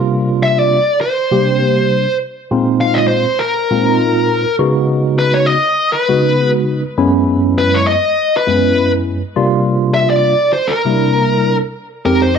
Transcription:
Already playing: tine electric piano C3 G3 A#3 D4 F4
0.43 lead electric guitar E5
0.59 lead electric guitar D5
1.01 lead electric guitar C5
1.31 tine electric piano C3 G3 A#3 D4 G4
2.51 tine electric piano A#2 G#3 C4 D#4 F4
2.81 lead electric guitar F5
2.94 lead electric guitar D#5
3.08 lead electric guitar C5
3.39 lead electric guitar A#4
3.71 tine electric piano A#2 G#3 C4 D#4 F4
4.59 tine electric piano C#3 G#3 B3 D#4 F#4
5.19 lead electric guitar B4
5.34 lead electric guitar C#5
5.46 lead electric guitar D#5
5.92 lead electric guitar B4
6.09 tine electric piano C#3 G#3 B3 D#4 F#4
6.98 tine electric piano F#2 G#3 B3 C#4 E4
7.58 lead electric guitar B4
7.74 lead electric guitar C#5
7.87 lead electric guitar D#5
8.37 lead electric guitar B4
8.47 tine electric piano F#2 G#3 B3 C#4 E4
9.36 tine electric piano C3 G3 A#3 D4 F4
9.94 lead electric guitar E5
10.10 lead electric guitar D5
10.53 lead electric guitar C5
10.67 lead electric guitar A#4
10.85 tine electric piano C3 G3 A#3 D4 E4
12.05 tine electric piano F2 G#3 C4 D#4 G4, lead electric guitar A#4
12.22 lead electric guitar C5

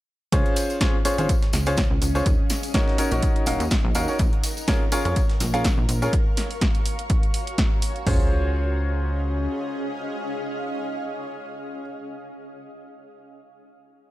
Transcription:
0.32 analog synth bass C#2, ambient pad C#4, grand piano C#4 F4 G#4 C5 C#5, kick, closed hi-hat, tambourine
0.46 closed hi-hat
0.56 snare, closed hi-hat, open hi-hat, tambourine
0.70 closed hi-hat, tambourine
0.81 grand piano C#4 F4 G#4 C5 C#5, kick, snare, closed hi-hat, tambourine
0.85 ambient pad G#4
0.96 ambient pad F5
1.05 grand piano C#4 F4 G#4 C5 C#5, closed hi-hat, open hi-hat, tambourine
1.18 analog synth bass G#1, grand piano C#4 F4 G#4 C5 C#5, ambient pad D#5, closed hi-hat, tambourine
1.29 kick, closed hi-hat, tambourine
1.43 snare, closed hi-hat
1.53 analog synth bass C#2, snare, closed hi-hat, open hi-hat, tambourine
1.66 grand piano C#4 F4 G#4 C5 C#5, closed hi-hat, tambourine
1.77 kick, snare, closed hi-hat, tambourine
1.91 analog synth bass C#2
2.02 analog synth bass C#2, closed hi-hat, open hi-hat, tambourine
2.15 grand piano C#4 F4 G#4 C5 C#5, closed hi-hat, tambourine
2.26 analog synth bass D#2, ambient pad D#4, kick, closed hi-hat, tambourine
2.46 ambient pad A#4, tambourine
2.50 snare, closed hi-hat, open hi-hat
2.63 open hi-hat, tambourine
2.74 grand piano C#4 D#4 F#4 A#4 C#5, kick, snare, closed hi-hat, tambourine
2.88 snare
2.98 grand piano C#4 D#4 F#4 A#4 C#5, closed hi-hat, open hi-hat, tambourine
3.11 analog synth bass A#1, grand piano C#4 D#4 F#4 A#4 C#5, closed hi-hat, tambourine
3.23 kick, closed hi-hat, tambourine
3.36 closed hi-hat
3.46 analog synth bass D#1, grand piano C#4 D#4 F#4 A#4 F5, closed hi-hat, open hi-hat, tambourine
3.60 analog synth bass D#2, closed hi-hat, tambourine
3.70 kick, snare, closed hi-hat, tambourine
3.84 analog synth bass A#1
3.95 analog synth bass D#2, grand piano C#4 D#4 F#4 A#4 F5, closed hi-hat, open hi-hat, tambourine
4.08 grand piano C#4 D#4 F#4 A#4 C#5, tambourine
4.19 analog synth bass A#1, kick, closed hi-hat, tambourine
4.33 closed hi-hat
4.43 snare, closed hi-hat, open hi-hat, tambourine
4.57 closed hi-hat, tambourine
4.68 grand piano C#4 F4 G#4 A#4 C#5, kick, snare, closed hi-hat, tambourine
4.78 ambient pad F5
4.92 grand piano C#4 F4 G#4 A#4 C#5, closed hi-hat, open hi-hat, tambourine
5.05 analog synth bass F2, grand piano C#4 F4 G#4 A#4 C#5, ambient pad C#6, closed hi-hat, tambourine
5.16 kick, closed hi-hat, tambourine
5.29 snare, closed hi-hat
5.40 analog synth bass A#1, snare, closed hi-hat, open hi-hat, tambourine
5.54 grand piano C#4 F4 G#4 A#4 F5, closed hi-hat, tambourine
5.64 kick, snare, closed hi-hat, tambourine
5.78 analog synth bass A#1
5.89 analog synth bass A#1, closed hi-hat, open hi-hat, tambourine
6.02 grand piano C#4 F4 G#4 A#4 C#5, closed hi-hat, tambourine
6.13 ambient pad F#4, kick, closed hi-hat
6.34 ambient pad C#5, snare, open hi-hat
6.51 open hi-hat
6.61 kick, snare, closed hi-hat
6.75 ambient pad G#5, closed hi-hat
6.86 open hi-hat
6.99 closed hi-hat
7.10 kick, closed hi-hat
7.23 closed hi-hat
7.34 open hi-hat
7.47 closed hi-hat
7.58 kick, snare, closed hi-hat
7.82 open hi-hat
7.96 closed hi-hat
8.06 analog synth bass C#2, ambient pad C#4, grand piano C#4 F4 G#4 C5 C#5, kick, floor tom, open hi-hat
8.14 ambient pad G#4
8.22 ambient pad D#5
8.29 ambient pad F5

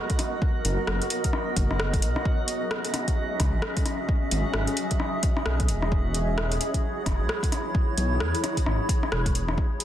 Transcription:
Already playing: synth texture F#3 F#4, ambient pad B3 F#4 A#4 D#5
0.10 kick, closed hi-hat
0.19 cross-stick, closed hi-hat
0.42 kick
0.65 detuned saw bass F#1, closed hi-hat
0.87 detuned saw bass F#1, cross-stick
1.02 closed hi-hat
1.10 closed hi-hat
1.24 kick, closed hi-hat
1.33 cross-stick
1.56 detuned saw bass F#1, kick, closed hi-hat
1.71 cross-stick
1.80 cross-stick
1.93 detuned saw bass F#1, kick, closed hi-hat
2.02 detuned saw bass B1, closed hi-hat
2.16 cross-stick
2.25 ambient pad C#4 G#4 E5, kick
2.48 closed hi-hat
2.71 cross-stick
2.85 closed hi-hat
2.94 cross-stick, closed hi-hat
3.08 kick, closed hi-hat
3.40 detuned saw bass C#2, kick, cross-stick, closed hi-hat
3.54 detuned saw bass G#1
3.62 cross-stick
3.77 kick, closed hi-hat
3.86 cross-stick, closed hi-hat
4.09 kick
4.31 detuned saw bass G#1, closed hi-hat
4.54 detuned saw bass G#1, cross-stick
4.67 closed hi-hat
4.77 closed hi-hat
4.91 kick, closed hi-hat
5.00 cross-stick
5.23 kick, closed hi-hat
5.37 cross-stick
5.46 detuned saw bass B1, cross-stick
5.60 kick, closed hi-hat
5.68 detuned saw bass E1, closed hi-hat
5.82 cross-stick
5.92 ambient pad E4 C#5, kick
6.14 closed hi-hat
6.38 cross-stick
6.52 closed hi-hat
6.61 closed hi-hat
6.74 kick, closed hi-hat
7.06 detuned saw bass E1, kick, cross-stick, closed hi-hat
7.20 detuned saw bass B1
7.29 cross-stick
7.43 kick, closed hi-hat
7.52 cross-stick, closed hi-hat
7.75 kick
7.98 detuned saw bass B1, closed hi-hat
8.20 detuned saw bass E2, cross-stick
8.35 closed hi-hat
8.44 cross-stick, closed hi-hat
8.57 kick, closed hi-hat
8.66 detuned saw bass G#1, cross-stick
8.89 kick, closed hi-hat
9.03 cross-stick
9.12 detuned saw bass E1, cross-stick
9.26 kick, closed hi-hat
9.35 closed hi-hat
9.49 cross-stick
9.58 ambient pad G#3 D#4 F#4 B4, kick
9.80 closed hi-hat

